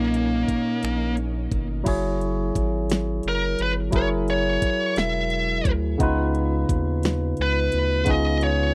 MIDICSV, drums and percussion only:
0, 0, Header, 1, 2, 480
1, 0, Start_track
1, 0, Tempo, 689655
1, 1297, Time_signature, 6, 3, 24, 8
1, 6083, End_track
2, 0, Start_track
2, 0, Title_t, "Drums"
2, 97, Note_on_c, 9, 42, 52
2, 167, Note_off_c, 9, 42, 0
2, 337, Note_on_c, 9, 36, 74
2, 338, Note_on_c, 9, 42, 47
2, 406, Note_off_c, 9, 36, 0
2, 408, Note_off_c, 9, 42, 0
2, 576, Note_on_c, 9, 42, 73
2, 589, Note_on_c, 9, 26, 96
2, 645, Note_off_c, 9, 42, 0
2, 659, Note_off_c, 9, 26, 0
2, 814, Note_on_c, 9, 42, 46
2, 883, Note_off_c, 9, 42, 0
2, 1055, Note_on_c, 9, 36, 81
2, 1057, Note_on_c, 9, 42, 39
2, 1124, Note_off_c, 9, 36, 0
2, 1127, Note_off_c, 9, 42, 0
2, 1297, Note_on_c, 9, 36, 106
2, 1297, Note_on_c, 9, 42, 62
2, 1297, Note_on_c, 9, 49, 98
2, 1366, Note_off_c, 9, 36, 0
2, 1367, Note_off_c, 9, 42, 0
2, 1367, Note_off_c, 9, 49, 0
2, 1541, Note_on_c, 9, 42, 60
2, 1610, Note_off_c, 9, 42, 0
2, 1778, Note_on_c, 9, 36, 81
2, 1781, Note_on_c, 9, 42, 75
2, 1847, Note_off_c, 9, 36, 0
2, 1851, Note_off_c, 9, 42, 0
2, 2016, Note_on_c, 9, 42, 74
2, 2029, Note_on_c, 9, 38, 114
2, 2085, Note_off_c, 9, 42, 0
2, 2099, Note_off_c, 9, 38, 0
2, 2250, Note_on_c, 9, 42, 53
2, 2319, Note_off_c, 9, 42, 0
2, 2496, Note_on_c, 9, 42, 65
2, 2566, Note_off_c, 9, 42, 0
2, 2731, Note_on_c, 9, 42, 63
2, 2735, Note_on_c, 9, 36, 108
2, 2801, Note_off_c, 9, 42, 0
2, 2805, Note_off_c, 9, 36, 0
2, 2978, Note_on_c, 9, 42, 57
2, 3048, Note_off_c, 9, 42, 0
2, 3216, Note_on_c, 9, 36, 84
2, 3216, Note_on_c, 9, 42, 72
2, 3285, Note_off_c, 9, 36, 0
2, 3286, Note_off_c, 9, 42, 0
2, 3454, Note_on_c, 9, 42, 76
2, 3467, Note_on_c, 9, 38, 101
2, 3523, Note_off_c, 9, 42, 0
2, 3537, Note_off_c, 9, 38, 0
2, 3690, Note_on_c, 9, 42, 46
2, 3759, Note_off_c, 9, 42, 0
2, 3933, Note_on_c, 9, 36, 95
2, 3935, Note_on_c, 9, 42, 67
2, 4002, Note_off_c, 9, 36, 0
2, 4005, Note_off_c, 9, 42, 0
2, 4176, Note_on_c, 9, 36, 107
2, 4177, Note_on_c, 9, 42, 68
2, 4245, Note_off_c, 9, 36, 0
2, 4247, Note_off_c, 9, 42, 0
2, 4418, Note_on_c, 9, 42, 57
2, 4487, Note_off_c, 9, 42, 0
2, 4657, Note_on_c, 9, 36, 88
2, 4660, Note_on_c, 9, 42, 69
2, 4727, Note_off_c, 9, 36, 0
2, 4730, Note_off_c, 9, 42, 0
2, 4894, Note_on_c, 9, 42, 80
2, 4908, Note_on_c, 9, 38, 110
2, 4964, Note_off_c, 9, 42, 0
2, 4978, Note_off_c, 9, 38, 0
2, 5129, Note_on_c, 9, 42, 50
2, 5199, Note_off_c, 9, 42, 0
2, 5373, Note_on_c, 9, 42, 63
2, 5442, Note_off_c, 9, 42, 0
2, 5608, Note_on_c, 9, 42, 63
2, 5616, Note_on_c, 9, 36, 97
2, 5678, Note_off_c, 9, 42, 0
2, 5685, Note_off_c, 9, 36, 0
2, 5855, Note_on_c, 9, 42, 59
2, 5925, Note_off_c, 9, 42, 0
2, 6083, End_track
0, 0, End_of_file